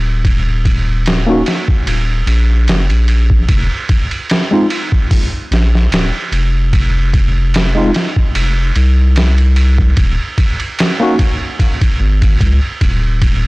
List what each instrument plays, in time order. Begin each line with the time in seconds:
Already playing: analog synth bass D#1
0.25 kick, ride
0.65 kick, ride
1.06 snare, ride
1.27 tine electric piano A#3 C#4 D#4 F#4
1.46 snare, ride
1.68 kick
1.86 analog synth bass D#1, ride
2.27 analog synth bass A#1, ride
2.67 analog synth bass F#1, snare, ride
2.89 analog synth bass A#1, ride
3.08 ride
3.30 kick
3.48 analog synth bass F1, kick, ride
3.89 kick, ride
4.11 ride
4.30 snare, ride
4.51 tine electric piano G#3 C4 D#4 F4
4.70 ride
4.92 kick
5.11 kick, open hi-hat
5.51 analog synth bass A#1, snare, ride
5.75 snare
5.92 analog synth bass D#1, snare, ride
6.32 analog synth bass F1, ride
6.73 kick, ride
7.14 kick, ride
7.54 snare, ride
7.75 tine electric piano G#3 C4 D#4 F4
7.94 snare, ride
8.16 kick
8.35 analog synth bass F1, ride
8.76 analog synth bass C2, ride
9.16 snare, ride
9.38 ride
9.56 ride
9.78 kick
9.97 analog synth bass D#1, kick, ride
10.38 kick, ride
10.60 ride
10.79 snare, ride
11.00 tine electric piano A#3 C#4 D#4 F#4
11.19 kick, ride
11.59 kick, ride
11.81 kick, ride
12.00 analog synth bass G#1
12.22 kick, ride
12.40 analog synth bass C#2, kick, ride
12.81 analog synth bass D#1, kick, ride
13.22 kick, ride